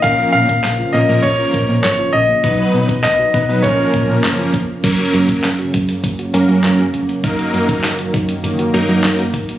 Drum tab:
CC |----------------|----------------|x---------------|----------------|
HH |----------------|----------------|xxxxxxxxxxxxxxxx|xxxxxxxxxxxxxxxx|
CP |----x-------x---|----x-------x---|----x-------x---|----x-------x---|
SD |----o-------o---|----o-------o---|----o-------o---|----o-------o---|
BD |o--o----o-o-----|o--o--o-o-o---o-|o--o--o-o-------|o--o--o-------o-|